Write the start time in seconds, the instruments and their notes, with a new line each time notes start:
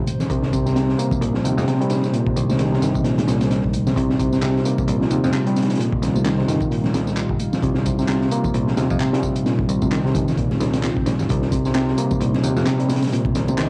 Already playing: reed electric piano A#2 C3 D#3 G3, ambient pad G3 D#4 C5
0.07 closed hi-hat, tambourine, high conga
0.20 snare, tambourine, low conga
0.30 picked electric bass C2, reed electric piano C3, kick, closed hi-hat, tambourine
0.43 snare
0.53 reed electric piano C3, kick, closed hi-hat, tambourine
0.65 reed electric piano C3, snare, tambourine
0.76 reed electric piano C3, snare, closed hi-hat, tambourine
0.89 snare
0.99 reed electric piano A#3, closed hi-hat, tambourine
1.11 kick, tambourine, low conga
1.21 picked electric bass C2, reed electric piano A#2, closed hi-hat, tambourine
1.34 reed electric piano F3, snare
1.44 picked electric bass D#2, reed electric piano C3, closed hi-hat, tambourine
1.57 picked electric bass F2, snare, tambourine, high conga
1.67 reed electric piano C3, snare, closed hi-hat, tambourine
1.81 reed electric piano G3, closed hi-hat
1.90 snare, closed hi-hat, tambourine
2.04 snare, tambourine
2.13 reed electric piano A#2, closed hi-hat, tambourine
2.26 kick
2.36 picked electric bass C2, reed electric piano D#3, closed hi-hat, tambourine
2.49 reed electric piano C3, snare, tambourine, high conga
2.59 reed electric piano D#3, snare, closed hi-hat, tambourine
2.72 reed electric piano C3, snare
2.82 picked electric bass G1, reed electric piano D#3, snare, closed hi-hat, tambourine
2.94 kick, tambourine, low conga
3.04 reed electric piano A#2, snare, closed hi-hat, tambourine
3.18 snare, closed hi-hat, high conga, low conga
3.28 picked electric bass C2, reed electric piano A#2, snare, closed hi-hat, tambourine
3.41 snare, closed hi-hat, tambourine, high conga
3.51 snare, closed hi-hat, tambourine
3.64 kick
3.73 closed hi-hat, tambourine, high conga
3.87 reed electric piano C3, snare, tambourine, low conga
3.96 picked electric bass C2, reed electric piano C3, ambient pad F4, kick, closed hi-hat, tambourine
4.10 snare
4.19 reed electric piano C3, kick, closed hi-hat, tambourine
4.33 reed electric piano C3, snare, tambourine
4.41 reed electric piano C3, snare, clap, closed hi-hat, tambourine
4.56 snare
4.65 reed electric piano A#3, closed hi-hat, tambourine
4.78 kick, tambourine, low conga
4.88 picked electric bass C2, reed electric piano A#2, closed hi-hat, tambourine
5.01 reed electric piano F3, snare
5.11 picked electric bass D#2, reed electric piano C3, closed hi-hat, tambourine
5.24 picked electric bass F2, snare, tambourine, high conga
5.34 reed electric piano C3, snare, clap, closed hi-hat, tambourine
5.47 reed electric piano G3, closed hi-hat
5.56 snare, closed hi-hat, tambourine
5.62 snare, closed hi-hat
5.69 snare, closed hi-hat, tambourine
5.74 snare, closed hi-hat
5.80 reed electric piano A#2, closed hi-hat, tambourine
5.92 kick
6.02 picked electric bass C2, reed electric piano D#3, snare, closed hi-hat, tambourine
6.15 reed electric piano C3, tambourine, high conga
6.25 reed electric piano D#3, snare, clap, closed hi-hat, tambourine
6.38 reed electric piano C3, snare
6.48 picked electric bass G1, reed electric piano D#3, snare, closed hi-hat, tambourine
6.61 kick, tambourine, low conga
6.71 reed electric piano A#2, closed hi-hat, tambourine
6.84 snare, high conga, low conga
6.94 picked electric bass C2, snare, closed hi-hat, tambourine
7.07 snare, tambourine, high conga
7.17 clap, closed hi-hat, tambourine
7.29 picked electric bass G1, kick
7.39 closed hi-hat, tambourine, high conga
7.53 snare, tambourine, low conga
7.63 picked electric bass C2, reed electric piano C3, kick, closed hi-hat, tambourine
7.75 snare
7.86 reed electric piano C3, kick, closed hi-hat, tambourine
7.99 reed electric piano C3, snare, tambourine
8.08 reed electric piano C3, snare, clap, closed hi-hat, tambourine
8.21 snare
8.32 reed electric piano A#3, closed hi-hat, tambourine
8.44 kick, tambourine, low conga
8.54 picked electric bass C2, reed electric piano A#2, closed hi-hat, tambourine
8.67 reed electric piano F3, snare
8.77 picked electric bass D#2, reed electric piano C3, snare, closed hi-hat, tambourine
8.90 picked electric bass F2, kick, tambourine, high conga
9.00 reed electric piano C3, clap, closed hi-hat, tambourine
9.13 reed electric piano G3, snare, closed hi-hat
9.23 kick, tambourine
9.36 closed hi-hat, tambourine
9.46 reed electric piano A#2, snare, closed hi-hat, tambourine
9.59 kick
9.69 picked electric bass C2, reed electric piano D#3, closed hi-hat, tambourine
9.82 reed electric piano C3, kick, tambourine, high conga
9.91 reed electric piano D#3, snare, clap, closed hi-hat, tambourine
10.05 reed electric piano C3, snare
10.15 picked electric bass G1, reed electric piano D#3, kick, closed hi-hat, tambourine
10.28 snare, tambourine, low conga
10.37 reed electric piano A#2, kick, closed hi-hat, tambourine, swell
10.51 snare, high conga, low conga
10.60 picked electric bass C2, snare, closed hi-hat, tambourine
10.74 snare, closed hi-hat, tambourine, high conga
10.83 snare, clap, closed hi-hat, tambourine
10.97 kick
11.06 picked electric bass A#1, snare, closed hi-hat, tambourine, high conga
11.19 picked electric bass G1, snare, tambourine, low conga
11.29 picked electric bass C2, reed electric piano C3, ambient pad C5, kick, closed hi-hat, tambourine
11.42 snare
11.52 reed electric piano C3, kick, closed hi-hat, tambourine, muted conga
11.65 reed electric piano C3, snare, tambourine
11.74 reed electric piano C3, snare, clap, closed hi-hat, tambourine, muted conga
11.88 snare
11.98 reed electric piano A#3, closed hi-hat, tambourine
12.11 kick, tambourine, muted conga, low conga
12.21 picked electric bass C2, reed electric piano A#2, closed hi-hat, tambourine
12.34 reed electric piano F3, snare, muted conga
12.44 picked electric bass D#2, reed electric piano C3, closed hi-hat, tambourine
12.56 picked electric bass F2, snare, tambourine, high conga
12.66 reed electric piano C3, snare, clap, closed hi-hat, tambourine, muted conga
12.80 reed electric piano G3, closed hi-hat
12.89 snare, closed hi-hat, tambourine, muted conga
12.96 snare, closed hi-hat
13.02 snare, closed hi-hat, tambourine
13.07 snare, closed hi-hat
13.12 reed electric piano A#2, closed hi-hat, tambourine
13.25 kick, muted conga
13.35 picked electric bass C2, reed electric piano D#3, snare, closed hi-hat, tambourine
13.48 reed electric piano C3, tambourine, muted conga, high conga
13.58 reed electric piano D#3, snare, clap, closed hi-hat, tambourine